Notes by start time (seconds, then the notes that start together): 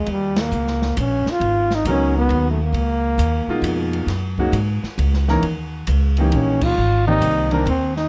Already playing: G#3
0.06 D#2, ride
0.12 G3
0.36 snare, ride
0.41 A#3
0.52 C#2, hi-hat pedal
0.67 snare
0.82 snare
0.97 A#1 C#4, hi-hat pedal, ride
1.26 muted upright bass stroke, snare
1.31 F4
1.40 G#1, ride
1.71 snare
1.75 D#4
1.85 C#2 F#3 B3 C#4 D#4 A#4, hi-hat pedal, ride
1.89 C#4
2.18 B3
2.29 D#2, ride
2.51 A3
2.63 A#3
2.73 C#2, ride
3.18 D#2, hi-hat pedal, ride
3.47 B2 G#3 A#3 D#4 F4, muted upright bass stroke
3.62 F2, hi-hat pedal, ride
3.93 ride
4.06 F#2, snare, ride
4.38 G#3 A#3 C#4 D#4 F#4, kick
4.52 G#2, hi-hat pedal, ride
4.83 muted upright bass stroke, snare
4.98 C#2, ride
5.14 snare
5.28 E3 A#3 C#4 D#4 A#4, snare
5.42 D#2, ride
5.87 C#2, hi-hat pedal, ride
6.17 E3 A#3 C#4 D#4 G4, ride
6.32 A#1 C#4, ride
6.61 F4, kick, crash
6.77 G#1
7.07 D#3 A#3 C4 D#4 G4 D5
7.21 C2, hi-hat pedal, ride
7.51 D#3 A#3 C4 D4 A#4, ride
7.66 D#2 C4, ride
7.96 D#4, snare